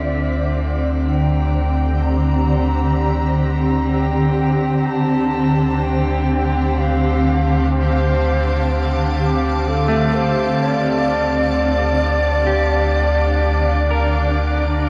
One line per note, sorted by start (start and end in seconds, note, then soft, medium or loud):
0.00 4.83 D2 medium
0.00 14.89 D3 medium
0.00 12.55 C4 medium
0.00 14.89 C4 medium
0.00 0.70 D4 medium
0.00 11.84 G4 medium
0.00 0.29 C5 medium
0.00 4.86 D5 medium
0.00 0.78 E5 medium
0.00 4.87 A#5 medium
1.07 2.04 G5 medium
2.02 3.45 A#5 medium
3.92 4.88 G5 medium
4.86 10.53 D2 medium
4.86 4.92 A#5 medium
4.86 14.89 D6 medium
4.91 5.85 A5 loud
5.32 14.89 F5 medium
5.64 14.89 A5 medium
5.84 6.80 G5 loud
6.79 7.74 F5 medium
7.74 8.86 C5 medium
9.19 9.69 G4 medium
9.68 10.16 A4 medium
9.88 12.94 A3 medium
10.15 10.64 C5 medium
10.59 14.89 D2 medium
10.59 14.89 D5 medium
11.02 14.89 D4 medium
12.47 14.09 G4 soft
13.91 14.89 A#4 soft